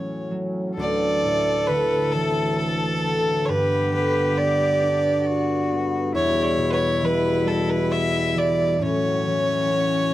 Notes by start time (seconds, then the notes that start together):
Already playing: A2 E3 F#3 C#4 C#5
0.31 F#3
0.74 D2 A2 A4
0.79 E3 D5
1.24 A2
1.67 D3 B4
2.12 E3 A4
2.57 A4
3.04 D3
3.45 G2 G4 C#5
3.49 G2 D3 B3 B4
3.93 D3 B4
4.38 B3 D5
4.82 D4
5.20 G4
5.27 F#4
5.72 B3
6.13 E2 B2 G3 E4 C#5
6.41 C#5 D5
6.58 B2
6.71 B4 C#5
7.02 E3 B4
7.45 G3 A4
7.70 B4
7.92 E5
8.34 E3
8.38 D5
8.79 A2 F#3 C#4 C#5
9.26 E3
9.71 C#4